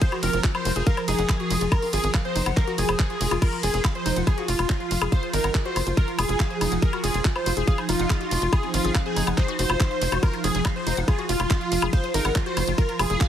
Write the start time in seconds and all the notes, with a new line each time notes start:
Already playing: F3 A#4
0.02 C5 F5, kick, closed hi-hat, ride
0.12 F#4, closed hi-hat, high woodblock
0.23 F1 C4 F4 A#4, open hi-hat, ride
0.33 F1 C4 F4, closed hi-hat
0.44 F4, kick, clap, closed hi-hat
0.55 F4 C5, closed hi-hat, high woodblock
0.65 F1 F4, open hi-hat, ride
0.76 F1 F4 G#4, closed hi-hat
0.87 A#4 F5, kick, closed hi-hat, ride
0.97 C5, closed hi-hat, high woodblock
1.08 F1 D#4 G#4, open hi-hat, ride
1.19 F1 D#4 F#5, closed hi-hat
1.29 F5, kick, clap, closed hi-hat, ride, high woodblock
1.40 F#4, closed hi-hat
1.50 F1 F4, open hi-hat, ride
1.61 F1 F4, closed hi-hat
1.72 F4 A#4, kick, closed hi-hat, ride, high woodblock
1.82 C4 F4, open hi-hat
1.93 G#1 F4 G#4, open hi-hat, ride
2.04 G#1 G#4, closed hi-hat
2.14 F5, kick, clap, closed hi-hat, ride, high woodblock
2.25 C5, closed hi-hat
2.36 F#1 D#4, open hi-hat, ride
2.46 F#1 F#5, closed hi-hat, high woodblock
2.57 A#4 F5, kick, clap, closed hi-hat, ride
2.68 F#4, closed hi-hat
2.78 F1 F4 G#4, open hi-hat, ride
2.89 F1 C5, closed hi-hat, high woodblock
2.99 kick, clap, closed hi-hat
3.10 F4, closed hi-hat
3.21 F1 F4, open hi-hat, ride
3.31 F1 F4, closed hi-hat, high woodblock
3.42 F3 F4 A#4, kick, closed hi-hat, crash, ride, high woodblock
3.53 F4, closed hi-hat
3.63 F1 C4 F4 G#4, open hi-hat, ride
3.74 F1 C4 G#4, closed hi-hat
3.85 F5, kick, clap, closed hi-hat, high woodblock
3.95 C5, closed hi-hat
4.06 F1 D#4 F4, open hi-hat, ride
4.16 F1 F4 F#5, closed hi-hat
4.27 G#4, kick, closed hi-hat, ride, high woodblock
4.38 F4 F#4, closed hi-hat
4.48 F1 F4, open hi-hat, ride
4.59 F1 F4, closed hi-hat, high woodblock
4.70 F4, kick, clap, closed hi-hat, ride
4.80 F4, closed hi-hat
4.91 F1 F4, open hi-hat, ride
5.02 F1 G#4, closed hi-hat, high woodblock
5.12 C5 F5, kick, closed hi-hat, ride
5.23 C5, closed hi-hat
5.33 G#1 G#3 D#4 A#4, open hi-hat, ride
5.44 G#1 F#5, closed hi-hat, high woodblock
5.55 G#4, kick, clap, closed hi-hat
5.65 F#4 C5, closed hi-hat
5.76 F#1 F4, open hi-hat, ride, high woodblock
5.87 F#1 F4, closed hi-hat
5.97 F4 A#4, kick, closed hi-hat, ride
6.08 F4, closed hi-hat
6.19 F1 F4 G#4, open hi-hat, ride, high woodblock
6.29 F1 G#4, closed hi-hat
6.40 F5, kick, clap, closed hi-hat
6.50 C5, closed hi-hat
6.61 F1 D#4, open hi-hat, ride, high woodblock
6.72 F1 F#5, closed hi-hat
6.82 D#4 G#4 A#4, kick, closed hi-hat, ride
6.93 F#4, closed hi-hat, high woodblock
7.04 F1 C4 F4 G#4, open hi-hat, ride
7.14 F1 C4 F4, closed hi-hat
7.25 F4, kick, clap, closed hi-hat, ride
7.36 F4 C5, closed hi-hat, high woodblock
7.46 F1 F4, open hi-hat, ride
7.57 F1 F4 G#4, closed hi-hat
7.67 G#4 F5, kick, closed hi-hat, ride
7.78 C5, closed hi-hat, high woodblock
7.89 F1 D#4 F4, open hi-hat, ride
7.99 F1 D#4 F#5, closed hi-hat
8.10 G#4, kick, clap, closed hi-hat, high woodblock
8.21 F#4, closed hi-hat
8.31 F1 F4, open hi-hat, ride
8.42 F1 F4, closed hi-hat
8.53 F4 G#4, kick, closed hi-hat, ride, high woodblock
8.63 C4 F4, closed hi-hat
8.74 G#1 F4, open hi-hat, ride
8.85 G#1 G#4, closed hi-hat
8.95 F5, kick, clap, closed hi-hat, ride, high woodblock
9.06 G#4 C5, closed hi-hat
9.16 F#1 D#4, open hi-hat, ride
9.27 F#1 F#5, closed hi-hat, high woodblock
9.38 G#4 C5, kick, clap, closed hi-hat, ride
9.48 F#4, closed hi-hat
9.59 F1 F#4 C5, open hi-hat, ride
9.70 F1 F4, closed hi-hat, high woodblock
9.80 F4, kick, clap, closed hi-hat
9.91 F5, closed hi-hat
10.02 F1 F4, open hi-hat, ride
10.12 F1 F#4, closed hi-hat, high woodblock
10.23 F4 A#4, kick, closed hi-hat, ride, high woodblock
10.33 F4, closed hi-hat
10.44 F1 C4 F4 G#4, open hi-hat, ride
10.55 F1 C4 G#4, closed hi-hat
10.65 F5, kick, clap, closed hi-hat, high woodblock
10.76 C5, closed hi-hat
10.87 F1 D#4 F4, open hi-hat, ride
10.97 F1 F4 F#5, closed hi-hat
11.08 F4 G#4, kick, closed hi-hat, ride, high woodblock
11.18 F4 F#4, closed hi-hat
11.29 F1 F4, open hi-hat, ride
11.40 F1 F4, closed hi-hat, high woodblock
11.50 F4, kick, clap, closed hi-hat, ride
11.61 F4, closed hi-hat
11.72 F1 F4, open hi-hat, ride
11.82 F1 G#4, high woodblock
11.93 C5 F5, kick, closed hi-hat, ride
12.04 C5, closed hi-hat
12.14 G#1 G#3 D#4 A#4, open hi-hat, ride
12.25 G#1 F#5, closed hi-hat, high woodblock
12.36 F4, kick, clap, closed hi-hat
12.46 F#4 C5, closed hi-hat
12.57 F#1 F4, open hi-hat, ride, high woodblock
12.67 F#1 F4, closed hi-hat
12.78 F4 A#4, kick, closed hi-hat, ride
12.89 F4, closed hi-hat
12.99 F1 F4 G#4, open hi-hat, ride, high woodblock
13.10 F1 G#4, closed hi-hat
13.21 F5, kick, clap, closed hi-hat, ride